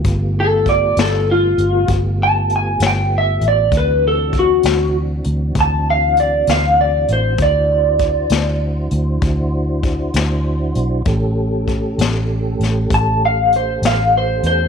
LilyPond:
<<
  \new Staff \with { instrumentName = "Clean electric guitar" } { \time 12/8 \key d \mixolydian \tempo 4. = 65 r8 a'8 d''8 a'8 f'4 r8 a''8 gis''8 g''8 e''8 d''8 | b'8 a'8 fis'4 r4 a''8 f''8 d''8 f''8 d''8 c''8 | d''2 r1 | r2. a''8 f''8 c''8 f''8 c''8 c''8 | }
  \new Staff \with { instrumentName = "Tonewheel organ" } { \time 12/8 \key d \mixolydian <a b f' g'>1. | <e c' d' fis'>1. | <d' e' fis' c''>1. | <a cis' g' a'>1. | }
  \new Staff \with { instrumentName = "Fingered electric bass" } { \clef bass \time 12/8 \key d \mixolydian g,,4. g,,4 g,,8 g,,4. g,,4 a,,8 | d,4. d,4 d,8 d,4. d,4 a,,8 | d,4. d,4 d,8 d,4. d,4 b,,8 | a,,4. a,,4 a,,8 a,,4. a,,4 e,8 | }
  \new DrumStaff \with { instrumentName = "Drums" } \drummode { \time 12/8 <hh bd>4 <hh bd>8 <hh sn>4 hh8 <hh bd>4 hh8 <hh sn>4 hh8 | <hh bd>4 <hh bd>8 <hh sn>4 hh8 <hh bd>4 hh8 <hh sn>4 hh8 | <hh bd>4 <hh bd>8 <hh sn>4 hh8 <hh bd>4 <hh bd>8 <hh sn>4 hh8 | <hh bd>4 <hh bd>8 <hh sn>4 <hh sn>8 <hh bd>4 hh8 <hh sn>4 hh8 | }
>>